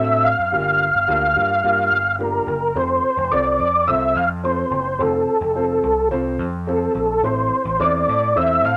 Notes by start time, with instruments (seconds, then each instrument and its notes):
Already playing: picked electric bass A2, upright piano C4 D4 F#4 A4, tonewheel organ E5
0.24 tonewheel organ F5
0.39 picked electric bass F#2
0.52 picked electric bass G1, upright piano A#3 D4 F4 G4
0.95 picked electric bass G1
1.07 picked electric bass D2, upright piano A#3 D4 F4 G4
1.35 picked electric bass G2, upright piano A#3 D4 F4 G4
1.63 picked electric bass G2, upright piano A#3 D4 F4 G4
1.92 picked electric bass G1
2.19 upright piano A#3 D4 F4 G4, tonewheel organ A#4
2.47 picked electric bass F#1
2.75 picked electric bass F1, upright piano C4 F4 A4 C5, tonewheel organ C5
3.17 picked electric bass F1
3.31 picked electric bass C2, upright piano C4 F4 A4 C5, tonewheel organ D5
3.60 picked electric bass F2
3.87 picked electric bass C2, upright piano C4 F4 A4 C5, tonewheel organ E5
4.15 picked electric bass F2, tonewheel organ F5
4.44 upright piano C4 F4 A4 C5, tonewheel organ C5
4.71 picked electric bass F#1
4.99 picked electric bass F1, upright piano C4 F4 A4 C5, tonewheel organ A4
5.41 picked electric bass F1
5.56 upright piano C4 F4 A4 C5
5.84 picked electric bass C2
6.11 picked electric bass C2, upright piano C4 F4 A4 C5
6.39 picked electric bass F2
6.67 upright piano C4 F4 A4 C5, tonewheel organ A4
6.95 picked electric bass A#1
7.23 picked electric bass A1, upright piano C4 E4 A4 C5, tonewheel organ C5
7.65 picked electric bass A1
7.79 picked electric bass E2, upright piano C4 E4 A4 C5, tonewheel organ D5
8.08 picked electric bass A2
8.36 picked electric bass E2, upright piano C4 E4 A4 C5, tonewheel organ E5
8.64 picked electric bass A2, tonewheel organ F5